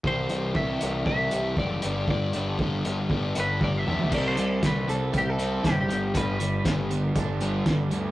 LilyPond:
<<
  \new Staff \with { instrumentName = "Clean electric guitar" } { \time 4/4 \key c \lydian \tempo 4 = 118 c''4 e''4 e''4 d''4 | d''2 r8 b'8 d''16 e''8. | d''16 c''8. b'8 a'8 g'16 a'8. g'16 g'8. | b'2 r2 | }
  \new Staff \with { instrumentName = "Overdriven electric guitar" } { \clef bass \time 4/4 \key c \lydian <c e g e' g'>8 <g e' g'>8 <c e g e' g'>8 <g e' g'>8 <e g e' g'>8 <c e g e' g'>8 <e g e' g'>8 <g, d g b d' g'>8 | <g, d g b d' g'>8 <g b d' g'>8 <g, d g b d' g'>8 <g b d' g'>8 <g b d' g'>8 <g, d g b d' g'>8 <g b d' g'>8 <g b d' g'>8 | <c g c'>8 <c g>8 <c g c'>8 <c g>8 <c g>8 <c g c'>8 <c g>8 <g, d g>8 | <g, d g>8 <g, d>8 <g, d g>8 <g, d>8 <g, d>8 <g, d g>8 <g, d>8 <g, d>8 | }
  \new Staff \with { instrumentName = "Overdriven electric guitar" } { \clef bass \time 4/4 \key c \lydian r1 | r1 | c8 g8 c8 c'8 e'8 c'8 g8 g,8 | g,8 g8 d8 b8 d'8 b8 g8 b8 | }
  \new Staff \with { instrumentName = "Picked electric bass" } { \clef bass \time 4/4 \key c \lydian c,8 c,8 c,8 c,8 c,8 c,8 fis,,8 g,,8 | g,,8 g,,8 g,,8 g,,8 g,,8 g,,8 g,,8 b,,8 | c,8 c,8 c,8 c,8 c,4 fis,,8 g,,8 | g,,4 g,,4 g,,4 r8 d,8 | }
  \new DrumStaff \with { instrumentName = "Drums" } \drummode { \time 4/4 bd8 hh8 bd8 hh8 bd8 hh8 bd8 hh8 | bd8 hh8 bd8 hh8 bd8 hh8 <bd tommh>8 toml16 tomfh16 | <cymc bd>8 hh8 <hh bd sn>8 hh8 <hh bd>8 hh8 <hh bd sn>8 hh8 | <hh bd>8 hh8 <hh bd sn>8 hh8 <hh bd>8 hh8 <hh bd sn>8 hh8 | }
>>